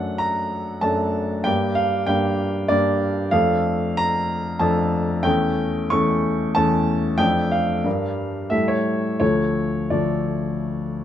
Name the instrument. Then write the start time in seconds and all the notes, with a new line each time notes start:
grand piano
Already playing: F#2 A3 D4 A4 F#5
0.18 A#5
0.81 F#2 A3 D4 A4 A5
1.44 G2 A#3 D4 G4 G5
1.75 F5
2.06 G2 A#3 D4 G4 G5
2.68 G2 A#3 D4 G4 D5
3.31 F2 A3 D4 A4 F5
3.97 A#5
4.59 F2 A3 D4 A4 A5
5.23 E2 A3 C#4 A4 G5
5.90 E2 A3 C#4 A4 C#6
6.55 E2 A3 C#4 A4 A5
7.18 F2 A3 D4 A4 G5
7.51 F5
7.84 G2 G3 D4 A#4
8.50 A2 G3 A3 A4 E5
8.68 C#5
9.20 D2 F3 A3 A4 C#5
9.90 D2 F3 A3 A4 D5